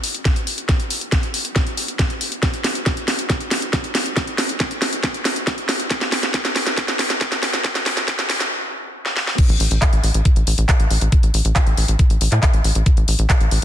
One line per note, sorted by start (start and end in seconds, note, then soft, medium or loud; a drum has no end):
0.04 open hi-hat loud
0.14 closed hi-hat medium
0.25 kick loud
0.25 snare medium
0.25 closed hi-hat medium
0.36 closed hi-hat medium
0.47 open hi-hat loud
0.58 closed hi-hat medium
0.69 kick loud
0.69 snare medium
0.69 closed hi-hat medium
0.80 closed hi-hat soft
0.90 open hi-hat loud
1.01 closed hi-hat soft
1.12 kick loud
1.12 snare medium
1.12 closed hi-hat medium
1.23 closed hi-hat medium
1.34 open hi-hat loud
1.45 closed hi-hat medium
1.56 kick loud
1.56 snare medium
1.56 closed hi-hat medium
1.67 closed hi-hat medium
1.77 open hi-hat loud
1.88 closed hi-hat medium
1.99 kick loud
1.99 snare medium
1.99 closed hi-hat medium
2.10 closed hi-hat soft
2.21 open hi-hat loud
2.32 closed hi-hat soft
2.43 kick loud
2.43 snare medium
2.43 closed hi-hat medium
2.54 closed hi-hat soft
2.64 snare medium
2.64 open hi-hat loud
2.75 closed hi-hat soft
2.86 kick loud
2.86 snare medium
2.86 closed hi-hat medium
2.97 closed hi-hat soft
3.08 snare medium
3.08 open hi-hat loud
3.19 closed hi-hat medium
3.30 kick loud
3.30 snare medium
3.30 closed hi-hat medium
3.40 closed hi-hat soft
3.51 snare medium
3.51 open hi-hat loud
3.62 closed hi-hat medium
3.73 kick loud
3.73 snare medium
3.73 closed hi-hat medium
3.84 closed hi-hat soft
3.95 snare medium
3.95 open hi-hat loud
4.06 closed hi-hat soft
4.17 kick loud
4.17 snare medium
4.17 closed hi-hat medium
4.27 closed hi-hat medium
4.38 snare medium
4.38 open hi-hat loud
4.49 closed hi-hat medium
4.60 kick loud
4.60 snare medium
4.60 closed hi-hat medium
4.71 closed hi-hat medium
4.82 snare medium
4.82 open hi-hat loud
4.93 closed hi-hat medium
5.04 kick loud
5.04 snare medium
5.04 closed hi-hat medium
5.14 closed hi-hat medium
5.25 snare medium
5.25 open hi-hat loud
5.36 closed hi-hat medium
5.47 kick loud
5.47 snare medium
5.47 closed hi-hat medium
5.58 closed hi-hat soft
5.69 snare medium
5.69 open hi-hat loud
5.80 closed hi-hat medium
5.90 kick loud
5.90 snare medium
5.90 closed hi-hat medium
6.01 snare medium
6.01 closed hi-hat soft
6.12 snare medium
6.12 open hi-hat loud
6.23 snare medium
6.23 closed hi-hat medium
6.34 kick loud
6.34 snare loud
6.34 closed hi-hat medium
6.45 snare medium
6.45 closed hi-hat medium
6.56 snare medium
6.56 open hi-hat loud
6.67 snare medium
6.67 closed hi-hat medium
6.77 kick loud
6.77 snare loud
6.77 closed hi-hat medium
6.88 snare medium
6.88 closed hi-hat medium
6.99 snare loud
6.99 open hi-hat loud
7.10 snare medium
7.10 closed hi-hat medium
7.21 kick loud
7.21 snare loud
7.21 closed hi-hat medium
7.32 snare medium
7.32 closed hi-hat medium
7.43 snare loud
7.43 open hi-hat loud
7.54 snare medium
7.54 closed hi-hat medium
7.64 kick loud
7.64 snare loud
7.64 closed hi-hat medium
7.75 snare medium
7.75 closed hi-hat medium
7.86 snare loud
7.86 open hi-hat loud
7.97 snare medium
7.97 closed hi-hat medium
8.08 kick loud
8.08 snare loud
8.08 closed hi-hat medium
8.19 snare medium
8.19 closed hi-hat medium
8.30 snare loud
8.30 open hi-hat loud
8.40 snare loud
8.40 closed hi-hat medium
9.06 snare medium
9.17 snare medium
9.27 snare medium
9.38 kick loud
9.38 closed hi-hat medium
9.38 crash loud
9.49 9.57 A1 medium
9.49 closed hi-hat medium
9.60 9.68 A1 loud
9.60 open hi-hat loud
9.71 9.79 A1 medium
9.71 closed hi-hat medium
9.82 kick loud
9.82 clap loud
9.82 closed hi-hat medium
9.93 10.00 A1 medium
9.93 closed hi-hat medium
10.03 10.11 A1 loud
10.03 open hi-hat medium
10.14 10.22 A1 loud
10.14 closed hi-hat medium
10.25 kick loud
10.25 closed hi-hat medium
10.36 10.44 A1 medium
10.36 closed hi-hat medium
10.47 10.55 A1 loud
10.47 open hi-hat loud
10.58 10.66 A1 loud
10.58 closed hi-hat medium
10.69 kick loud
10.69 clap loud
10.69 closed hi-hat medium
10.80 10.87 A1 medium
10.80 closed hi-hat medium
10.90 10.98 A1 loud
10.90 open hi-hat medium
11.01 11.09 A1 medium
11.01 closed hi-hat medium
11.12 kick loud
11.12 closed hi-hat medium
11.23 11.31 A1 medium
11.23 closed hi-hat medium
11.34 11.42 A1 medium
11.34 open hi-hat loud
11.45 11.53 A1 medium
11.45 closed hi-hat medium
11.56 kick loud
11.56 clap loud
11.56 closed hi-hat medium
11.67 11.74 A1 medium
11.67 closed hi-hat medium
11.77 11.85 A1 loud
11.77 open hi-hat medium
11.88 11.96 A1 medium
11.88 closed hi-hat medium
11.99 kick loud
11.99 closed hi-hat medium
12.10 12.18 A1 medium
12.10 closed hi-hat medium
12.21 12.29 A1 loud
12.21 open hi-hat loud
12.32 12.40 A2 loud
12.32 clap soft
12.32 closed hi-hat medium
12.43 kick loud
12.43 clap loud
12.43 closed hi-hat medium
12.54 12.61 A1 medium
12.54 closed hi-hat medium
12.64 12.72 A1 loud
12.64 open hi-hat medium
12.75 12.83 A1 medium
12.75 closed hi-hat medium
12.86 kick loud
12.86 closed hi-hat medium
12.97 13.05 A1 medium
12.97 closed hi-hat soft
13.08 13.16 A1 loud
13.08 open hi-hat loud
13.19 13.27 A1 loud
13.19 closed hi-hat soft
13.30 kick loud
13.30 clap loud
13.30 closed hi-hat medium
13.40 13.48 A1 medium
13.40 closed hi-hat medium
13.51 13.59 A1 loud
13.51 open hi-hat loud